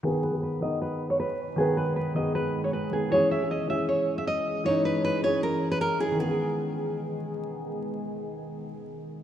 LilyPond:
<<
  \new Staff \with { instrumentName = "Nylon-string guitar" } { \time 4/4 \key gis \minor \tempo 4 = 156 gis'8 b'8 b'8 dis''8 b'8. cis''16 b'4 | gis'8 b'8 b'8 dis''8 b'8. cis''16 b'8 gis'8 | cis''8 e''8 dis''8 e''8 cis''8. e''16 dis''4 | cis''8 b'8 b'8 cis''8 ais'8. b'16 ais'8 gis'8 |
gis'2. r4 | r1 | }
  \new Staff \with { instrumentName = "Ambient pad" } { \time 4/4 \key gis \minor << { <dis b gis'>1~ | <dis b gis'>1 | <e cis' gis'>1~ | <e cis' gis'>1 |
<dis gis b gis'>1~ | <dis gis b gis'>1 | } \\ { gis1~ | gis1~ | gis1~ | gis1 |
r1 | r1 | } >> }
  \new Staff \with { instrumentName = "Grand piano" } { \time 4/4 \key gis \minor <dis b gis'>8 r16 <dis b gis'>8 r16 <dis b dis'>4~ <dis b dis'>16 r4 r16 | <dis b b'>4 r8 <dis b gis'>4~ <dis b gis'>16 r8. <dis b gis'>16 r16 | <e cis' gis'>8 r16 <e cis' gis'>8 r16 <e cis' gis'>4~ <e cis' gis'>16 r4 r16 | <e cis' dis'>4 r8 <e cis' gis'>4~ <e cis' gis'>16 r8. <e cis' gis'>16 r16 |
<dis b gis'>1~ | <dis b gis'>1 | }
>>